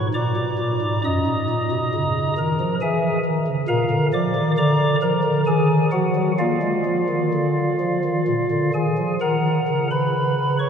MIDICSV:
0, 0, Header, 1, 2, 480
1, 0, Start_track
1, 0, Key_signature, -6, "minor"
1, 0, Tempo, 888889
1, 561, Time_signature, 3, 2, 24, 8
1, 2952, Tempo, 930233
1, 5650, End_track
2, 0, Start_track
2, 0, Title_t, "Pipe organ"
2, 0, Program_c, 0, 19
2, 0, Note_on_c, 0, 44, 59
2, 56, Note_off_c, 0, 44, 0
2, 75, Note_on_c, 0, 86, 98
2, 76, Note_on_c, 0, 46, 65
2, 76, Note_on_c, 0, 82, 71
2, 77, Note_on_c, 0, 74, 79
2, 178, Note_off_c, 0, 46, 0
2, 197, Note_on_c, 0, 47, 58
2, 300, Note_off_c, 0, 47, 0
2, 316, Note_on_c, 0, 46, 65
2, 420, Note_off_c, 0, 46, 0
2, 439, Note_on_c, 0, 44, 62
2, 542, Note_off_c, 0, 44, 0
2, 547, Note_off_c, 0, 86, 0
2, 548, Note_off_c, 0, 74, 0
2, 548, Note_off_c, 0, 82, 0
2, 561, Note_on_c, 0, 42, 73
2, 562, Note_on_c, 0, 87, 102
2, 563, Note_on_c, 0, 75, 75
2, 564, Note_on_c, 0, 82, 80
2, 664, Note_off_c, 0, 42, 0
2, 683, Note_on_c, 0, 44, 61
2, 785, Note_off_c, 0, 44, 0
2, 809, Note_on_c, 0, 46, 68
2, 909, Note_off_c, 0, 46, 0
2, 925, Note_on_c, 0, 47, 68
2, 1026, Note_off_c, 0, 47, 0
2, 1047, Note_on_c, 0, 49, 76
2, 1247, Note_off_c, 0, 49, 0
2, 1259, Note_off_c, 0, 75, 0
2, 1259, Note_off_c, 0, 87, 0
2, 1260, Note_off_c, 0, 82, 0
2, 1283, Note_on_c, 0, 82, 97
2, 1284, Note_on_c, 0, 51, 75
2, 1287, Note_on_c, 0, 70, 70
2, 1382, Note_off_c, 0, 51, 0
2, 1404, Note_on_c, 0, 53, 72
2, 1482, Note_off_c, 0, 82, 0
2, 1484, Note_off_c, 0, 70, 0
2, 1502, Note_off_c, 0, 53, 0
2, 1519, Note_on_c, 0, 52, 83
2, 1519, Note_on_c, 0, 80, 95
2, 1521, Note_on_c, 0, 76, 69
2, 1522, Note_on_c, 0, 68, 75
2, 1718, Note_off_c, 0, 52, 0
2, 1718, Note_off_c, 0, 80, 0
2, 1719, Note_off_c, 0, 76, 0
2, 1720, Note_off_c, 0, 68, 0
2, 1756, Note_on_c, 0, 51, 75
2, 1854, Note_off_c, 0, 51, 0
2, 1872, Note_on_c, 0, 49, 74
2, 1972, Note_off_c, 0, 49, 0
2, 1987, Note_on_c, 0, 46, 94
2, 1989, Note_on_c, 0, 70, 86
2, 1989, Note_on_c, 0, 77, 95
2, 1989, Note_on_c, 0, 82, 112
2, 2089, Note_off_c, 0, 46, 0
2, 2108, Note_on_c, 0, 50, 81
2, 2193, Note_off_c, 0, 70, 0
2, 2193, Note_off_c, 0, 77, 0
2, 2193, Note_off_c, 0, 82, 0
2, 2210, Note_off_c, 0, 50, 0
2, 2232, Note_on_c, 0, 53, 76
2, 2232, Note_on_c, 0, 74, 84
2, 2232, Note_on_c, 0, 86, 109
2, 2333, Note_off_c, 0, 53, 0
2, 2352, Note_on_c, 0, 51, 80
2, 2436, Note_off_c, 0, 74, 0
2, 2436, Note_off_c, 0, 86, 0
2, 2453, Note_off_c, 0, 51, 0
2, 2470, Note_on_c, 0, 86, 120
2, 2471, Note_on_c, 0, 50, 87
2, 2472, Note_on_c, 0, 74, 94
2, 2473, Note_on_c, 0, 82, 92
2, 2675, Note_off_c, 0, 50, 0
2, 2675, Note_off_c, 0, 86, 0
2, 2676, Note_off_c, 0, 74, 0
2, 2676, Note_off_c, 0, 82, 0
2, 2709, Note_on_c, 0, 82, 113
2, 2711, Note_on_c, 0, 53, 78
2, 2711, Note_on_c, 0, 70, 86
2, 2814, Note_off_c, 0, 53, 0
2, 2829, Note_on_c, 0, 50, 81
2, 2916, Note_off_c, 0, 82, 0
2, 2917, Note_off_c, 0, 70, 0
2, 2933, Note_off_c, 0, 50, 0
2, 2951, Note_on_c, 0, 51, 86
2, 2952, Note_on_c, 0, 80, 114
2, 2954, Note_on_c, 0, 68, 85
2, 3152, Note_off_c, 0, 51, 0
2, 3153, Note_off_c, 0, 80, 0
2, 3154, Note_off_c, 0, 68, 0
2, 3185, Note_on_c, 0, 78, 96
2, 3186, Note_on_c, 0, 66, 72
2, 3187, Note_on_c, 0, 53, 77
2, 3290, Note_off_c, 0, 53, 0
2, 3307, Note_on_c, 0, 54, 68
2, 3391, Note_off_c, 0, 78, 0
2, 3392, Note_off_c, 0, 66, 0
2, 3411, Note_off_c, 0, 54, 0
2, 3426, Note_on_c, 0, 77, 102
2, 3428, Note_on_c, 0, 58, 78
2, 3429, Note_on_c, 0, 65, 76
2, 3430, Note_on_c, 0, 74, 80
2, 3532, Note_off_c, 0, 58, 0
2, 3546, Note_on_c, 0, 56, 66
2, 3652, Note_off_c, 0, 56, 0
2, 3669, Note_on_c, 0, 53, 62
2, 3774, Note_off_c, 0, 53, 0
2, 3791, Note_on_c, 0, 51, 61
2, 3896, Note_off_c, 0, 51, 0
2, 3916, Note_on_c, 0, 50, 72
2, 4122, Note_off_c, 0, 50, 0
2, 4159, Note_on_c, 0, 53, 65
2, 4262, Note_off_c, 0, 53, 0
2, 4282, Note_on_c, 0, 51, 62
2, 4384, Note_off_c, 0, 51, 0
2, 4402, Note_on_c, 0, 46, 64
2, 4504, Note_off_c, 0, 46, 0
2, 4522, Note_on_c, 0, 50, 56
2, 4620, Note_off_c, 0, 77, 0
2, 4621, Note_off_c, 0, 65, 0
2, 4621, Note_off_c, 0, 74, 0
2, 4625, Note_off_c, 0, 50, 0
2, 4640, Note_on_c, 0, 51, 59
2, 4641, Note_on_c, 0, 80, 75
2, 4643, Note_on_c, 0, 68, 61
2, 4743, Note_off_c, 0, 51, 0
2, 4764, Note_on_c, 0, 53, 58
2, 4846, Note_off_c, 0, 80, 0
2, 4847, Note_off_c, 0, 68, 0
2, 4865, Note_off_c, 0, 53, 0
2, 4883, Note_on_c, 0, 51, 74
2, 4883, Note_on_c, 0, 82, 97
2, 4884, Note_on_c, 0, 70, 70
2, 4884, Note_on_c, 0, 78, 76
2, 5084, Note_off_c, 0, 51, 0
2, 5125, Note_on_c, 0, 49, 65
2, 5227, Note_off_c, 0, 82, 0
2, 5228, Note_off_c, 0, 70, 0
2, 5228, Note_off_c, 0, 78, 0
2, 5242, Note_on_c, 0, 83, 93
2, 5245, Note_on_c, 0, 71, 64
2, 5583, Note_off_c, 0, 83, 0
2, 5585, Note_off_c, 0, 71, 0
2, 5597, Note_on_c, 0, 73, 72
2, 5598, Note_on_c, 0, 85, 97
2, 5650, Note_off_c, 0, 49, 0
2, 5650, Note_off_c, 0, 73, 0
2, 5650, Note_off_c, 0, 85, 0
2, 5650, End_track
0, 0, End_of_file